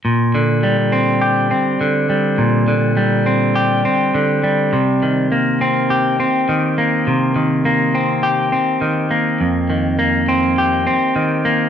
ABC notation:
X:1
M:4/4
L:1/8
Q:1/4=102
K:Bbmix
V:1 name="Clean electric guitar"
B,, D, G, C G C D, G, | B,, D, G, C G C D, G, | C, E, B, C G C E, B, | C, E, B, C G C E, B, |
F,, E, B, C G C E, B, |]